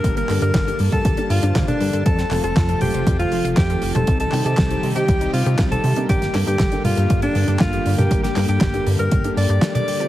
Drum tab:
HH |xxoxxxoxxxoxxxox|xxoxxxoxxxoxxxox|xxoxxxoxxxoxxxox|xxoxxxoxxxoxxxox|
CP |--x-x-------x---|--x-x-------x---|--x-x-------x---|--x-x-------x---|
SD |----o-------o---|-o--o-------o---|----o-------o---|-o--o-------o---|
T1 |-------------o--|------o--------o|-------------o--|------o--------o|
BD |o---o--oo---o---|o---o---o---o---|o---o---o---o---|o---o---o---o---|

HH |xxoxxxoxxxoxxxox|
CP |--x-x-------x---|
SD |-o--o-------o---|
T1 |-------------o--|
BD |o---o---o-------|